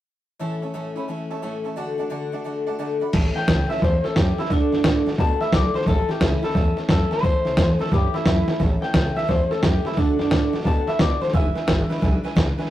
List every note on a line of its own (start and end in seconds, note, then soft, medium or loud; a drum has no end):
0.39 0.62 A2 medium
0.39 0.62 E3 loud
0.39 0.63 A3 medium
0.39 0.62 C#4 medium
0.39 0.61 E4 medium
0.39 0.53 C#5 loud
0.39 0.54 E5 medium
0.39 0.54 A5 loud
0.62 0.73 A3 medium
0.62 0.74 C#4 medium
0.62 0.74 E4 medium
0.62 0.69 C#5 medium
0.62 0.70 E5 medium
0.62 0.70 A5 medium
0.74 0.96 A2 medium
0.74 0.96 E3 medium
0.74 0.97 A3 medium
0.74 0.96 C#4 medium
0.74 0.94 E4 loud
0.74 0.88 C#5 medium
0.74 0.88 E5 medium
0.74 0.88 A5 loud
0.96 1.08 A3 medium
0.96 1.08 C#4 medium
0.96 1.08 E4 medium
0.96 1.03 C#5 medium
0.96 1.04 E5 medium
0.96 1.04 B5 loud
1.08 1.31 E3 medium
1.08 1.31 A3 medium
1.08 1.30 C#4 medium
1.08 1.29 E4 medium
1.08 1.22 C#5 medium
1.08 1.22 E5 medium
1.08 1.22 A5 medium
1.30 1.42 A3 soft
1.30 1.42 C#4 medium
1.30 1.43 E4 medium
1.30 1.38 C#5 loud
1.30 1.38 E5 loud
1.30 1.38 A5 loud
1.42 1.65 A2 medium
1.42 1.65 E3 medium
1.42 1.65 A3 medium
1.42 1.64 C#4 medium
1.42 1.63 E4 medium
1.42 1.56 C#5 loud
1.42 1.56 E5 medium
1.42 1.56 A5 loud
1.64 1.75 A3 medium
1.64 1.77 C#4 medium
1.64 1.77 E4 medium
1.64 1.72 C#5 medium
1.64 1.72 E5 medium
1.64 1.73 A5 loud
1.76 1.99 D3 medium
1.76 1.99 A3 medium
1.76 1.98 D4 loud
1.76 1.97 F#4 medium
1.76 1.90 D5 loud
1.76 1.90 F#5 medium
1.76 1.91 A5 loud
1.98 2.09 A3 medium
1.98 2.10 D4 medium
1.98 2.10 F#4 medium
1.98 2.06 D5 medium
1.98 2.06 F#5 medium
1.98 2.07 A5 medium
2.10 2.33 D3 medium
2.10 2.33 A3 medium
2.10 2.32 D4 medium
2.10 2.31 F#4 medium
2.10 2.24 D5 medium
2.10 2.24 F#5 medium
2.10 2.25 A5 medium
2.32 2.44 A3 soft
2.32 2.45 D4 medium
2.32 2.45 F#4 medium
2.32 2.40 D5 medium
2.32 2.41 F#5 medium
2.32 2.41 A5 medium
2.44 2.67 D3 medium
2.44 2.67 A3 medium
2.44 2.67 D4 medium
2.44 2.65 F#4 medium
2.44 2.58 D5 medium
2.44 2.59 F#5 medium
2.44 2.59 A5 medium
2.67 2.78 A3 soft
2.67 2.79 D4 soft
2.67 2.79 F#4 medium
2.67 2.74 D5 loud
2.67 2.75 F#5 loud
2.67 2.75 A5 loud
2.79 3.01 D3 medium
2.79 3.01 A3 medium
2.79 3.00 D4 medium
2.79 2.99 F#4 medium
2.79 2.93 D5 loud
2.79 2.93 F#5 medium
2.79 2.93 A5 loud
3.00 3.13 A3 soft
3.00 3.13 D4 medium
3.00 3.13 F#4 medium
3.00 3.09 D5 medium
3.00 3.09 F#5 medium
3.00 3.09 B5 loud
3.13 3.28 A1 medium
3.13 3.35 A2 medium
3.13 3.36 E3 medium
3.13 3.36 A3 medium
3.13 3.35 C#4 medium
3.13 3.34 E4 medium
3.13 3.27 C#5 loud
3.13 3.27 E5 loud
3.13 3.27 A5 loud
3.13 kick loud
3.13 snare soft
3.13 crash medium
3.35 3.47 A3 soft
3.35 3.48 C#4 soft
3.35 3.47 E4 medium
3.35 3.43 C#5 medium
3.35 3.43 E5 medium
3.35 3.69 G5 medium
3.35 3.43 A5 medium
3.35 muted upright bass stroke medium
3.35 snare soft
3.46 3.62 C#2 medium
3.46 3.70 A2 medium
3.46 3.70 E3 medium
3.46 3.70 A3 medium
3.46 3.70 C#4 medium
3.46 3.68 E4 loud
3.46 3.60 C#5 medium
3.46 3.61 E5 medium
3.46 3.61 A5 medium
3.46 kick medium
3.46 snare loud
3.46 hi-hat pedal medium
3.70 3.82 A3 soft
3.70 3.82 C#4 medium
3.70 3.82 E4 medium
3.70 3.77 C#5 medium
3.70 3.81 E5 medium
3.70 3.77 E5 medium
3.70 3.77 A5 medium
3.70 snare soft
3.76 snare soft
3.81 3.96 E2 medium
3.81 4.04 E3 medium
3.81 4.05 A3 medium
3.81 4.05 C#4 medium
3.81 4.03 E4 medium
3.81 4.04 C5 medium
3.81 3.95 C#5 medium
3.81 3.95 E5 medium
3.81 3.95 A5 loud
3.81 kick loud
3.81 snare soft
4.04 4.16 A3 soft
4.04 4.16 C#4 medium
4.04 4.16 E4 medium
4.04 4.16 A4 medium
4.04 4.11 C#5 medium
4.04 4.11 E5 medium
4.04 4.12 A5 medium
4.04 muted upright bass stroke medium
4.04 snare soft
4.16 4.30 F#2 medium
4.16 4.38 A2 medium
4.16 4.39 E3 medium
4.16 4.39 A3 medium
4.16 4.38 C#4 medium
4.16 4.37 E4 medium
4.16 4.38 G4 medium
4.16 4.30 E5 medium
4.16 4.30 A5 medium
4.16 kick medium
4.16 snare loud
4.16 hi-hat pedal medium
4.38 4.50 A3 soft
4.38 4.51 C#4 soft
4.38 4.50 E4 medium
4.38 4.45 C#5 medium
4.38 4.45 E5 medium
4.38 4.46 A5 medium
4.38 muted upright bass stroke medium
4.38 snare soft
4.44 snare soft
4.50 4.65 D2 medium
4.50 4.73 D3 medium
4.50 4.73 A3 medium
4.50 4.72 D4 medium
4.50 4.71 F#4 medium
4.50 4.63 D5 loud
4.50 4.64 F#5 medium
4.50 4.64 A5 loud
4.50 kick loud
4.50 snare soft
4.72 4.80 F#2 medium
4.72 4.84 A3 soft
4.72 4.84 D4 medium
4.72 5.06 D4 medium
4.72 4.84 F#4 medium
4.72 4.80 D5 medium
4.72 4.80 F#5 medium
4.72 4.80 A5 medium
4.72 snare soft
4.84 4.99 A2 medium
4.84 5.06 D3 medium
4.84 5.07 A3 medium
4.84 5.06 D4 loud
4.84 5.05 F#4 medium
4.84 4.98 D5 medium
4.84 4.98 F#5 medium
4.84 4.98 A5 medium
4.84 kick medium
4.84 snare loud
4.84 hi-hat pedal medium
5.06 5.18 A3 soft
5.06 5.19 D4 medium
5.06 5.18 F#4 medium
5.06 5.14 D5 medium
5.06 5.14 F#5 medium
5.06 5.14 A5 medium
5.06 muted upright bass stroke medium
5.06 snare soft
5.13 snare soft
5.18 5.33 B2 medium
5.18 5.41 D3 medium
5.18 5.41 A3 medium
5.18 5.40 D4 medium
5.18 5.39 F#4 medium
5.18 5.32 D5 medium
5.18 5.32 F#5 medium
5.18 5.32 A5 loud
5.18 5.41 A5 loud
5.18 kick loud
5.18 snare soft
5.40 5.52 A3 soft
5.40 5.53 D4 soft
5.40 5.53 F#4 medium
5.40 5.48 D5 medium
5.40 5.54 E5 medium
5.40 5.48 F#5 medium
5.40 5.48 B5 medium
5.40 muted upright bass stroke medium
5.40 snare soft
5.52 5.67 B1 medium
5.52 5.75 D3 medium
5.52 5.75 A3 medium
5.52 5.75 D4 medium
5.52 5.73 F#4 medium
5.52 5.66 D5 medium
5.52 5.75 D5 medium
5.52 5.66 F#5 medium
5.52 5.67 A5 medium
5.52 kick medium
5.52 snare loud
5.52 hi-hat pedal loud
5.74 5.86 A3 soft
5.74 5.87 D4 medium
5.74 5.87 F#4 medium
5.74 5.87 C5 medium
5.74 5.82 D5 medium
5.74 5.82 F#5 medium
5.74 5.82 A5 medium
5.74 muted upright bass stroke medium
5.74 snare soft
5.81 snare soft
5.86 6.01 A1 medium
5.86 6.09 A2 medium
5.86 6.09 E3 medium
5.86 6.09 A3 medium
5.86 6.09 C#4 medium
5.86 6.07 E4 medium
5.86 6.10 A4 loud
5.86 6.00 C#5 medium
5.86 6.00 E5 medium
5.86 6.00 A5 loud
5.86 kick loud
5.86 snare soft
6.08 6.20 A3 soft
6.08 6.21 C#4 soft
6.08 6.21 E4 medium
6.08 6.22 G4 medium
6.08 6.16 C#5 medium
6.08 6.16 E5 medium
6.08 6.16 A5 medium
6.08 muted upright bass stroke medium
6.08 snare soft
6.20 6.35 C#2 loud
6.20 6.43 A2 medium
6.20 6.43 E3 medium
6.20 6.43 A3 medium
6.20 6.42 C#4 loud
6.20 6.43 E4 medium
6.20 6.41 E4 medium
6.20 6.34 C#5 medium
6.20 6.34 E5 medium
6.20 6.35 A5 medium
6.20 kick medium
6.20 snare loud
6.20 hi-hat pedal medium
6.42 6.54 A3 soft
6.42 6.55 C#4 medium
6.42 6.55 E4 medium
6.42 6.77 A4 loud
6.42 6.50 C#5 medium
6.42 6.50 E5 medium
6.42 6.50 B5 loud
6.42 muted upright bass stroke medium
6.42 snare soft
6.49 snare soft
6.54 6.69 E2 medium
6.54 6.77 E3 medium
6.54 6.78 A3 medium
6.54 6.77 C#4 medium
6.54 6.75 E4 medium
6.54 6.68 C#5 medium
6.54 6.68 E5 medium
6.54 6.68 A5 medium
6.54 kick loud
6.54 snare soft
6.76 6.88 A3 soft
6.76 6.89 C#4 medium
6.76 6.89 E4 soft
6.76 6.84 C#5 medium
6.76 6.84 E5 medium
6.76 6.85 A5 medium
6.76 muted upright bass stroke medium
6.76 snare soft
6.88 7.03 F#2 medium
6.88 7.11 A2 medium
6.88 7.12 E3 medium
6.88 7.12 A3 medium
6.88 7.11 C#4 medium
6.88 7.09 E4 medium
6.88 7.12 A4 loud
6.88 7.02 C#5 medium
6.88 7.02 E5 medium
6.88 kick loud
6.88 snare loud
6.88 hi-hat pedal medium
7.11 7.23 A3 soft
7.11 7.23 C#4 soft
7.11 7.23 E4 medium
7.11 7.79 C5 loud
7.11 7.18 C#5 medium
7.11 7.19 E5 medium
7.11 7.19 A5 medium
7.11 muted upright bass stroke medium
7.11 snare soft
7.17 snare soft
7.22 7.38 A1 medium
7.22 7.46 A2 medium
7.22 7.46 E3 medium
7.22 7.46 A3 medium
7.22 7.46 C#4 medium
7.22 7.44 E4 medium
7.22 7.36 C#5 medium
7.22 7.37 E5 medium
7.22 7.37 A5 loud
7.22 kick loud
7.22 snare soft
7.45 7.54 C#2 medium
7.45 7.57 A3 soft
7.45 7.57 C#4 medium
7.45 7.57 E4 medium
7.45 7.52 C#5 medium
7.45 7.53 E5 medium
7.45 7.53 A5 medium
7.45 snare soft
7.57 7.72 E2 medium
7.57 7.80 A2 medium
7.57 7.80 E3 loud
7.57 7.80 A3 loud
7.57 7.79 C#4 loud
7.57 7.78 E4 loud
7.57 7.71 C#5 medium
7.57 7.71 E5 medium
7.57 7.71 A5 medium
7.57 kick medium
7.57 snare loud
7.57 hi-hat pedal medium
7.79 7.91 A3 soft
7.79 7.92 C#4 medium
7.79 7.91 E4 medium
7.79 7.92 A4 loud
7.79 7.87 C#5 medium
7.79 7.87 E5 medium
7.79 7.87 A5 medium
7.79 muted upright bass stroke medium
7.79 snare soft
7.86 snare soft
7.91 8.06 G2 medium
7.91 8.14 E3 medium
7.91 8.14 A3 medium
7.91 8.13 C#4 medium
7.91 8.12 E4 medium
7.91 8.14 G4 medium
7.91 8.05 C#5 medium
7.91 8.05 E5 medium
7.91 8.05 B5 medium
7.91 kick loud
7.91 snare soft
8.13 8.25 A3 soft
8.13 8.26 C#4 medium
8.13 8.26 E4 medium
8.13 8.25 E4 medium
8.13 8.21 C#5 medium
8.13 8.21 E5 medium
8.13 8.21 A5 medium
8.13 muted upright bass stroke medium
8.13 snare soft
8.25 8.40 F#2 medium
8.25 8.48 A2 medium
8.25 8.48 E3 medium
8.25 8.48 A3 medium
8.25 8.47 C#4 medium
8.25 8.59 E4 loud
8.25 8.46 E4 medium
8.25 8.39 C#5 medium
8.25 8.39 E5 medium
8.25 8.39 A5 medium
8.25 kick medium
8.25 snare loud
8.25 hi-hat pedal loud
8.48 8.59 A3 soft
8.48 8.59 C#4 soft
8.48 8.60 E4 medium
8.48 8.55 C#5 medium
8.48 8.55 E5 medium
8.48 8.56 A5 medium
8.48 snare medium
8.59 8.75 A1 medium
8.59 8.82 A2 medium
8.59 8.82 E3 medium
8.59 8.82 A3 medium
8.59 8.82 C#4 medium
8.59 8.81 E4 medium
8.59 8.73 C#5 medium
8.59 8.73 E5 medium
8.59 8.74 A5 loud
8.59 kick loud
8.59 snare soft
8.81 8.93 A3 medium
8.81 8.94 C#4 soft
8.81 8.94 E4 medium
8.81 8.89 C#5 medium
8.81 8.89 E5 medium
8.81 9.16 G5 medium
8.81 8.90 A5 medium
8.81 snare soft
8.94 9.09 C#2 medium
8.94 9.16 A2 medium
8.94 9.16 E3 medium
8.94 9.17 A3 medium
8.94 9.16 C#4 medium
8.94 9.15 E4 medium
8.94 9.07 C#5 medium
8.94 9.08 E5 medium
8.94 9.08 A5 medium
8.94 kick medium
8.94 snare loud
8.94 hi-hat pedal medium
9.16 9.27 A3 soft
9.16 9.28 C#4 medium
9.16 9.28 E4 medium
9.16 9.24 C#5 medium
9.16 9.24 E5 medium
9.16 9.28 E5 medium
9.16 9.24 A5 medium
9.16 muted upright bass stroke medium
9.16 snare soft
9.22 snare soft
9.28 9.43 E2 medium
9.28 9.50 E3 medium
9.28 9.51 A3 medium
9.28 9.50 C#4 medium
9.28 9.49 E4 medium
9.28 9.50 C5 medium
9.28 9.42 C#5 medium
9.28 9.42 E5 medium
9.28 9.43 A5 medium
9.28 kick loud
9.28 snare soft
9.50 9.62 A3 soft
9.50 9.63 C#4 medium
9.50 9.63 E4 medium
9.50 9.63 A4 medium
9.50 9.58 C#5 medium
9.50 9.58 E5 medium
9.50 9.58 A5 medium
9.50 muted upright bass stroke medium
9.50 snare soft
9.62 9.77 F#2 medium
9.62 9.85 A2 medium
9.62 9.85 E3 medium
9.62 9.85 A3 medium
9.62 9.85 C#4 medium
9.62 9.84 E4 medium
9.62 9.85 G4 medium
9.62 9.76 C#5 medium
9.62 9.76 E5 medium
9.62 9.76 G5 medium
9.62 kick loud
9.62 snare loud
9.62 hi-hat pedal loud
9.84 9.96 A3 soft
9.84 9.97 C#4 medium
9.84 9.97 E4 soft
9.84 9.97 E4 medium
9.84 9.92 C#5 medium
9.84 9.92 E5 medium
9.84 9.92 A5 medium
9.84 muted upright bass stroke medium
9.84 snare soft
9.91 snare soft
9.96 10.11 D2 medium
9.96 10.19 D3 medium
9.96 10.19 A3 medium
9.96 10.18 D4 medium
9.96 10.19 D4 medium
9.96 10.17 F#4 medium
9.96 10.10 D5 medium
9.96 10.11 F#5 medium
9.96 10.11 A5 loud
9.96 kick loud
9.96 snare soft
10.18 10.27 F#2 medium
10.18 10.30 A3 soft
10.18 10.53 D4 medium
10.18 10.31 D4 medium
10.18 10.31 F#4 medium
10.18 10.26 D5 medium
10.18 10.27 F#5 medium
10.18 10.27 A5 medium
10.18 snare soft
10.30 10.46 A2 medium
10.30 10.53 D3 medium
10.30 10.53 A3 medium
10.30 10.53 D4 medium
10.30 10.51 F#4 loud
10.30 10.44 D5 medium
10.30 10.45 A5 medium
10.30 kick medium
10.30 snare loud
10.30 hi-hat pedal medium
10.53 10.64 A3 soft
10.53 10.65 D4 soft
10.53 10.65 F#4 medium
10.53 10.60 D5 medium
10.53 10.61 F#5 medium
10.53 10.61 A5 medium
10.53 muted upright bass stroke medium
10.53 snare soft
10.60 snare soft
10.64 10.80 B2 medium
10.64 10.87 D3 medium
10.64 10.88 A3 medium
10.64 10.87 D4 medium
10.64 10.86 F#4 medium
10.64 10.78 D5 medium
10.64 10.78 F#5 medium
10.64 10.79 A5 loud
10.64 10.87 A5 medium
10.64 kick loud
10.64 snare soft
10.87 10.98 A3 soft
10.87 10.99 D4 soft
10.87 10.99 F#4 medium
10.87 10.95 D5 medium
10.87 10.99 E5 loud
10.87 10.95 F#5 medium
10.87 10.95 B5 medium
10.87 muted upright bass stroke medium
10.87 snare soft
10.99 11.14 B2 medium
10.99 11.21 D3 medium
10.99 11.22 A3 medium
10.99 11.21 D4 medium
10.99 11.20 F#4 medium
10.99 11.13 D5 medium
10.99 11.21 D5 medium
10.99 11.13 F#5 medium
10.99 11.13 A5 medium
10.99 kick loud
10.99 snare loud
10.99 hi-hat pedal loud
11.21 11.34 A3 soft
11.21 11.34 D4 soft
11.21 11.33 F#4 soft
11.21 11.34 C5 medium
11.21 11.29 D5 medium
11.21 11.29 F#5 medium
11.21 11.29 A5 medium
11.21 muted upright bass stroke medium
11.21 snare soft
11.27 snare soft
11.33 11.48 E1 medium
11.33 11.56 E2 medium
11.33 11.56 B2 medium
11.33 11.56 E3 medium
11.33 11.56 G#3 medium
11.33 11.55 D4 medium
11.33 11.54 E4 medium
11.33 11.47 B4 loud
11.33 11.47 E5 medium
11.33 12.34 E5 loud
11.33 11.47 G#5 loud
11.33 kick loud
11.33 snare soft
11.55 11.66 E3 medium
11.55 11.67 G#3 soft
11.55 11.67 D4 medium
11.55 11.68 E4 medium
11.55 11.63 B4 medium
11.55 11.63 E5 medium
11.55 11.63 G#5 medium
11.55 muted upright bass stroke medium
11.55 snare soft
11.67 11.82 G#1 medium
11.67 11.90 E2 medium
11.67 11.90 B2 medium
11.67 11.90 E3 medium
11.67 11.90 G#3 medium
11.67 11.89 D4 medium
11.67 11.88 E4 loud
11.67 11.81 B4 medium
11.67 11.81 E5 medium
11.67 11.81 G#5 medium
11.67 kick medium
11.67 snare loud
11.67 hi-hat pedal medium
11.89 12.00 E3 medium
11.89 12.01 G#3 medium
11.89 12.02 D4 medium
11.89 12.02 E4 medium
11.89 11.97 B4 loud
11.89 11.97 E5 medium
11.89 11.98 B5 loud
11.89 snare soft
11.96 snare soft
12.01 12.17 B1 medium
12.01 12.24 E3 medium
12.01 12.24 G#3 medium
12.01 12.23 D4 medium
12.01 12.22 E4 medium
12.01 12.15 B4 loud
12.01 12.15 E5 loud
12.01 12.16 G#5 loud
12.01 kick loud
12.01 snare soft
12.23 12.35 E3 soft
12.23 12.36 G#3 medium
12.23 12.36 D4 medium
12.23 12.36 E4 medium
12.23 12.31 B4 loud
12.23 12.32 E5 medium
12.23 12.32 G#5 loud
12.23 muted upright bass stroke medium
12.23 snare soft
12.36 12.51 C#2 medium
12.36 12.58 E2 medium
12.36 12.58 B2 medium
12.36 12.59 E3 medium
12.36 12.58 G#3 medium
12.36 12.57 D4 medium
12.36 12.57 E4 medium
12.36 12.49 B4 medium
12.36 12.50 E5 medium
12.36 12.50 G#5 loud
12.36 kick loud
12.36 snare loud
12.36 hi-hat pedal loud
12.58 12.69 E3 soft
12.58 12.70 G#3 soft
12.58 12.70 D4 medium
12.58 12.70 E4 medium
12.58 12.65 B4 loud
12.58 12.66 E5 medium
12.58 12.66 G#5 loud
12.58 snare soft
12.65 snare soft